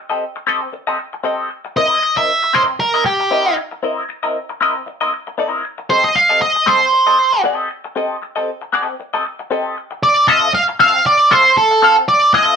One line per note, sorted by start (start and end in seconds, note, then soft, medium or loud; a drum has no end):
0.10 0.24 C4 soft
0.10 0.24 G4 medium
0.10 0.23 A4 medium
0.10 0.23 D#5 medium
0.36 muted clean electric guitar stroke soft
0.47 0.66 C4 medium
0.47 0.62 G4 medium
0.47 0.61 A4 medium
0.47 0.60 D#5 medium
0.61 muted clean electric guitar stroke soft
0.73 muted clean electric guitar stroke soft
0.87 0.97 C4 medium
0.87 0.98 G4 medium
0.87 0.99 A4 medium
0.87 0.99 D#5 medium
0.99 muted clean electric guitar stroke soft
1.13 muted clean electric guitar stroke soft
1.24 1.48 C4 medium
1.24 1.49 G4 medium
1.24 1.49 A4 medium
1.24 1.49 D#5 loud
1.50 muted clean electric guitar stroke soft
1.65 muted clean electric guitar stroke soft
1.76 1.96 C4 medium
1.76 1.96 E4 medium
1.76 1.96 A#4 medium
1.76 2.14 D#5 loud
1.76 1.97 D#5 medium
2.02 muted clean electric guitar stroke medium
2.17 2.31 C4 soft
2.17 2.30 E4 medium
2.17 2.30 A#4 medium
2.17 2.30 D#5 medium
2.17 2.55 E5 loud
2.43 muted clean electric guitar stroke soft
2.53 2.73 C4 medium
2.53 2.68 E4 medium
2.53 2.68 A#4 medium
2.53 2.61 C5 loud
2.53 2.67 D#5 medium
2.68 muted clean electric guitar stroke soft
2.80 3.05 A#4 loud
2.80 muted clean electric guitar stroke soft
2.94 3.04 C4 medium
2.94 3.05 E4 medium
2.94 3.05 A#4 medium
2.94 3.05 D#5 medium
3.05 3.54 G4 medium
3.05 muted clean electric guitar stroke soft
3.20 muted clean electric guitar stroke soft
3.31 3.55 C4 medium
3.31 3.55 E4 medium
3.31 3.56 A#4 medium
3.31 3.56 D#5 medium
3.57 muted clean electric guitar stroke soft
3.71 muted clean electric guitar stroke soft
3.83 4.02 C4 medium
3.83 4.02 E4 medium
3.83 4.03 A#4 medium
3.83 4.03 D#5 medium
4.09 muted clean electric guitar stroke soft
4.23 4.37 C4 medium
4.23 4.37 E4 medium
4.23 4.37 A#4 medium
4.23 4.36 D#5 medium
4.50 muted clean electric guitar stroke medium
4.61 4.80 C4 medium
4.61 4.75 E4 medium
4.61 4.75 A#4 loud
4.61 4.74 D#5 loud
4.75 muted clean electric guitar stroke soft
4.86 muted clean electric guitar stroke soft
5.01 5.12 C4 medium
5.01 5.12 E4 medium
5.01 5.13 A#4 medium
5.01 5.13 D#5 medium
5.13 muted clean electric guitar stroke soft
5.27 muted clean electric guitar stroke soft
5.38 5.62 C4 medium
5.38 5.62 E4 medium
5.38 5.62 A#4 loud
5.38 5.63 D#5 loud
5.64 muted clean electric guitar stroke soft
5.78 muted clean electric guitar stroke soft
5.89 6.09 C4 medium
5.89 6.09 G4 medium
5.89 6.09 A4 medium
5.89 6.03 C5 loud
5.89 6.10 D#5 medium
6.04 6.16 D#5 loud
6.15 6.41 F5 loud
6.15 muted clean electric guitar stroke medium
6.29 6.43 C4 medium
6.29 6.43 G4 medium
6.29 6.43 A4 medium
6.29 6.43 D#5 medium
6.42 6.68 D#5 medium
6.55 muted clean electric guitar stroke soft
6.66 6.86 C4 medium
6.66 6.81 G4 medium
6.66 6.81 A4 loud
6.66 7.41 C5 medium
6.66 6.80 D#5 medium
6.81 muted clean electric guitar stroke soft
6.93 muted clean electric guitar stroke soft
7.07 7.17 C4 medium
7.07 7.18 G4 medium
7.07 7.18 A4 medium
7.07 7.19 D#5 medium
7.18 muted clean electric guitar stroke soft
7.32 muted clean electric guitar stroke medium
7.44 7.68 C4 medium
7.44 7.68 G4 medium
7.44 7.69 A4 loud
7.44 7.69 D#5 loud
7.70 muted clean electric guitar stroke soft
7.84 muted clean electric guitar stroke soft
7.96 8.15 C4 medium
7.96 8.15 G4 medium
7.96 8.16 A4 medium
7.96 8.16 D#5 loud
8.22 muted clean electric guitar stroke medium
8.36 8.50 C4 medium
8.36 8.50 G4 medium
8.36 8.49 A4 medium
8.36 8.49 D#5 medium
8.61 muted clean electric guitar stroke soft
8.73 8.94 C4 medium
8.73 8.88 G4 medium
8.73 8.87 A4 medium
8.73 8.87 D#5 loud
8.88 muted clean electric guitar stroke soft
9.00 muted clean electric guitar stroke soft
9.14 9.24 C4 medium
9.14 9.25 G4 medium
9.14 9.25 A4 medium
9.14 9.25 D#5 medium
9.25 muted clean electric guitar stroke soft
9.39 muted clean electric guitar stroke soft
9.51 9.75 C4 medium
9.51 9.75 G4 medium
9.51 9.75 A4 loud
9.51 9.75 D#5 loud
9.77 muted clean electric guitar stroke soft
9.91 muted clean electric guitar stroke soft
10.03 10.28 D5 loud
10.28 10.47 C4 loud
10.28 10.48 F4 medium
10.28 10.48 A4 loud
10.28 10.54 D#5 loud
10.28 10.48 E5 loud
10.54 10.61 F5 medium
10.54 muted clean electric guitar stroke soft
10.68 muted clean electric guitar stroke soft
10.79 10.99 C4 medium
10.79 10.94 F4 medium
10.79 10.94 A4 medium
10.79 10.93 E5 loud
10.79 11.06 F5 loud
10.94 muted clean electric guitar stroke soft
11.05 11.33 D5 loud
11.05 muted clean electric guitar stroke soft
11.31 11.47 C4 medium
11.31 11.45 F4 medium
11.31 11.44 A4 medium
11.31 11.57 C5 loud
11.31 11.44 E5 medium
11.45 muted clean electric guitar stroke medium
11.58 11.95 A4 loud
11.71 muted clean electric guitar stroke soft
11.82 12.02 C4 loud
11.82 11.97 F4 medium
11.82 11.96 A4 loud
11.82 11.97 F5 loud
11.97 muted clean electric guitar stroke medium
12.08 12.33 D5 loud
12.34 12.55 C4 medium
12.34 12.55 F4 medium
12.34 12.55 A4 loud
12.34 12.56 D#5 loud
12.34 12.56 E5 medium